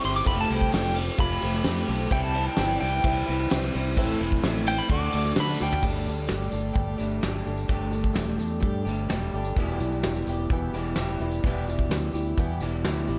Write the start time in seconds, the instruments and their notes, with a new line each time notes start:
Already playing: clean electric guitar G3, upright piano G4 C5 E5
0.02 fingered electric bass G1, twelve-string acoustic guitar C4 E4 G4, pedal steel guitar C6, ride
0.16 pedal steel guitar D6
0.24 fingered electric bass F1, twelve-string acoustic guitar F3 A3 C4 G4, upright piano G4 A4 F5, pedal steel guitar B5, kick, ride
0.30 clean electric guitar C4 G4
0.41 pedal steel guitar A5
0.48 fingered electric bass C2, twelve-string acoustic guitar A3 C4 G4, ride
0.52 clean electric guitar A3, pedal steel guitar G5
0.61 kick
0.70 fingered electric bass F1, twelve-string acoustic guitar F3 A3 C4 G4, pedal steel guitar G5, snare, ride, tambourine
0.75 clean electric guitar A3 C4 G4
0.96 twelve-string acoustic guitar A3 C4 G4, ride
1.17 fingered electric bass F1, twelve-string acoustic guitar F3 A3 C4 G4, upright piano G4 A4 F5, pedal steel guitar B5, kick, ride
1.41 fingered electric bass F1, twelve-string acoustic guitar A3 C4 G4, ride
1.47 clean electric guitar F3
1.53 snare
1.63 fingered electric bass F2, twelve-string acoustic guitar F3 A3 C4 G4, snare, ride, tambourine
1.69 clean electric guitar G4
1.87 fingered electric bass B1, twelve-string acoustic guitar A3 C4 G4, ride
2.10 fingered electric bass C2, twelve-string acoustic guitar C3 E3 G3 C4 E4, upright piano G4 C5 E5, pedal steel guitar G5, kick, crash
2.24 pedal steel guitar A5
2.34 twelve-string acoustic guitar G3 C4 E4, ride
2.48 pedal steel guitar G5
2.56 fingered electric bass G1, twelve-string acoustic guitar C3 E3 G3 C4 E4, snare, ride, tambourine
2.81 fingered electric bass C2, twelve-string acoustic guitar G3 C4 E4, pedal steel guitar G5, ride
3.03 fingered electric bass C2, twelve-string acoustic guitar E3 G3 C4 E4, upright piano G4 C5 E5, kick, ride
3.26 fingered electric bass C2, clean electric guitar C3 E3, twelve-string acoustic guitar G3 C4 E4, ride
3.39 snare
3.50 fingered electric bass C2, twelve-string acoustic guitar C3 E3 G3 C4 E4, snare, ride, tambourine
3.74 fingered electric bass C2, twelve-string acoustic guitar G3 C4 E4, ride
3.97 fingered electric bass A1, twelve-string acoustic guitar A2 E3 A3 C4 E4, upright piano A4 C5 E5, kick, ride
4.20 fingered electric bass E1, twelve-string acoustic guitar A3 C4 E4, ride
4.32 kick
4.43 fingered electric bass A1, twelve-string acoustic guitar A2 E3 A3 C4 E4, snare, ride, tambourine
4.66 twelve-string acoustic guitar A3 C4 E4, pedal steel guitar G5, ride
4.78 pedal steel guitar B5
4.89 fingered electric bass D2, twelve-string acoustic guitar D3 A3 D4 F#4, upright piano A4 D5, pedal steel guitar D6, kick, ride
4.93 upright piano F#5
5.12 fingered electric bass D2, twelve-string acoustic guitar A3 D4 F#4, ride
5.17 clean electric guitar D3
5.25 snare
5.36 twelve-string acoustic guitar D3 A3 D4 F#4, fingered electric bass D3, snare, ride, tambourine
5.40 pedal steel guitar B5
5.60 fingered electric bass D2, twelve-string acoustic guitar A3 D4 F#4, pedal steel guitar G5, snare
5.72 floor tom
5.83 fingered electric bass G1, twelve-string acoustic guitar G3 A3 D4 G4, kick, crash, tambourine
6.05 fingered electric bass D2, twelve-string acoustic guitar A3 D4 G4, closed hi-hat, tambourine
6.27 fingered electric bass G1, twelve-string acoustic guitar G3 A3 D4 G4, snare, closed hi-hat, tambourine
6.40 tambourine
6.51 fingered electric bass G1, twelve-string acoustic guitar A3 D4 G4, closed hi-hat, tambourine
6.73 fingered electric bass G1, twelve-string acoustic guitar G3 A3 D4 G4, kick, closed hi-hat
6.96 fingered electric bass G1, twelve-string acoustic guitar A3 D4 G4, closed hi-hat, tambourine
7.02 clean electric guitar G3
7.11 tambourine
7.22 fingered electric bass G1, twelve-string acoustic guitar G3 A3 D4 G4, snare, closed hi-hat, tambourine
7.35 tambourine
7.45 fingered electric bass G1, twelve-string acoustic guitar A3 D4 G4, closed hi-hat
7.57 tambourine
7.69 fingered electric bass G1, twelve-string acoustic guitar G3 A3 D4 G4, kick, closed hi-hat, tambourine
7.91 twelve-string acoustic guitar A3 D4 G4, closed hi-hat, tambourine
8.04 kick, tambourine
8.13 fingered electric bass E1, twelve-string acoustic guitar G3 A3 D4 G4, snare, closed hi-hat, tambourine
8.28 tambourine
8.37 fingered electric bass E2, twelve-string acoustic guitar A3 D4 G4, closed hi-hat, tambourine
8.60 fingered electric bass G2, twelve-string acoustic guitar G3 A3 D4 G4, kick, closed hi-hat
8.82 fingered electric bass G1, twelve-string acoustic guitar A3 D4 G4, closed hi-hat
8.87 clean electric guitar G3, tambourine
8.99 tambourine
9.08 fingered electric bass E1, twelve-string acoustic guitar G3 A3 D4 G4, snare, closed hi-hat, tambourine
9.22 tambourine
9.33 fingered electric bass G1, twelve-string acoustic guitar A3 D4 G4, closed hi-hat
9.45 tambourine
9.56 fingered electric bass E1, twelve-string acoustic guitar E2 B2 E3 G3 E4 G4, kick, closed hi-hat, tambourine
9.80 fingered electric bass B1, twelve-string acoustic guitar E3 G3 E4 G4, closed hi-hat, tambourine
9.92 tambourine
10.03 fingered electric bass E1, twelve-string acoustic guitar E3 G3 E4 G4, snare, closed hi-hat, tambourine
10.16 tambourine
10.27 fingered electric bass E1, twelve-string acoustic guitar E3 G3 E4 G4, closed hi-hat, tambourine
10.49 fingered electric bass E1, twelve-string acoustic guitar E2 B2 E3 G3 E4 G4, kick, closed hi-hat
10.73 fingered electric bass E1, twelve-string acoustic guitar E3 G3 E4 G4, closed hi-hat, tambourine
10.77 clean electric guitar E2 B2
10.86 tambourine
10.95 fingered electric bass E1, clean electric guitar E2 B2, twelve-string acoustic guitar E3 G3 E4, snare, closed hi-hat, tambourine
10.99 twelve-string acoustic guitar G4
11.08 tambourine
11.20 fingered electric bass E1, twelve-string acoustic guitar E3 G3 E4 G4, closed hi-hat
11.32 tambourine
11.44 fingered electric bass E1, twelve-string acoustic guitar E2 B2 E3 G3 E4 G4, kick, closed hi-hat, tambourine
11.57 tambourine
11.67 twelve-string acoustic guitar E3 G3 E4 G4, closed hi-hat, tambourine
11.79 kick
11.89 fingered electric bass D2, twelve-string acoustic guitar E3 G3 E4 G4, snare, closed hi-hat, tambourine
12.13 fingered electric bass D2, twelve-string acoustic guitar E3 G3 E4 G4, closed hi-hat, tambourine
12.37 fingered electric bass E2, twelve-string acoustic guitar E2 B2 E3 G3 E4 G4, kick, closed hi-hat, tambourine
12.49 tambourine
12.60 fingered electric bass E1, clean electric guitar B2, twelve-string acoustic guitar G3 E4 G4, closed hi-hat, tambourine
12.64 clean electric guitar E2, twelve-string acoustic guitar E3
12.84 fingered electric bass D2, clean electric guitar E2 B2, twelve-string acoustic guitar E3 G3 E4 G4, snare, closed hi-hat, tambourine
13.08 fingered electric bass A1, twelve-string acoustic guitar E3 G3 E4 G4, closed hi-hat, tambourine